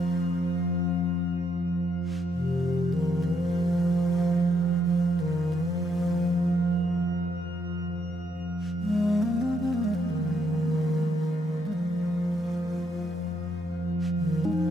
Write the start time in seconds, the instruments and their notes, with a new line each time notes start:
Already playing: synth drone F2 F3, bass flute F3, singing bowl C4
2.33 bass flute C3
2.94 bass flute D#3
3.24 bass flute F3
4.84 bass flute F3
5.20 bass flute D#3
5.53 bass flute F3
8.81 bass flute G#3
9.23 bass flute A#3
9.42 bass flute C4
9.60 bass flute C4
9.74 bass flute A#3
9.84 bass flute G#3
9.95 bass flute F3
10.10 bass flute D#3
10.60 synth drone F2 F3
11.67 bass flute G#3
11.73 bass flute F3
14.18 bass flute D#3
14.45 bass flute G#3, singing bowl D#4
14.53 bass flute F3